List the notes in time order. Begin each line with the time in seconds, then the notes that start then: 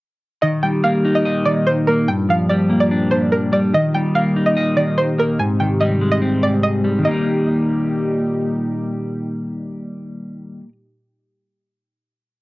0.42 A#2 D#3 G3 D#4 G4 D#5
0.63 G3 G5
0.84 A#3 F5
1.05 D#4
1.15 D#5
1.25 D#5
1.45 D#3 D5
1.67 C5
1.87 A#3 A#4
2.08 G2 F3 D4 G4 G5
2.29 F3 F5
2.49 G3 D5
2.70 A#3
2.80 D5
2.91 D4
3.11 G2 C5
3.32 A#4
3.52 G3 D5
3.74 A#2 D#3 G3 D#4 G4 D#5
3.94 G3 G5
4.15 A#3 F5
4.36 D#4
4.46 D#5
4.57 D#5
4.76 D#3 D5
4.98 C5
5.18 A#3 A#4
5.39 G#2 C3 C4 G#5
5.60 D#3 G5
5.81 G3 D#5
6.01 G#3
6.12 D#5
6.22 C4
6.43 G#2 D5
6.63 D#5
6.84 G3
6.99 D#3 G3
7.05 A#2 G3 A#3 D#4 G4 D#5
7.11 D#4